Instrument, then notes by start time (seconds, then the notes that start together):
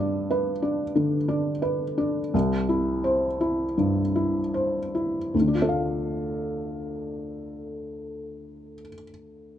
felt piano
Already playing: G2 D4
0.31 B4
0.62 D4
0.96 D3
1.28 D4
1.62 B4
1.98 D4
2.34 C2
2.69 E4
3.04 C5
3.41 E4
3.78 G2
4.16 E4
4.54 C5
4.95 E4
5.34 D2
5.41 D3
5.48 D4
5.55 F4
5.62 A4
5.69 F5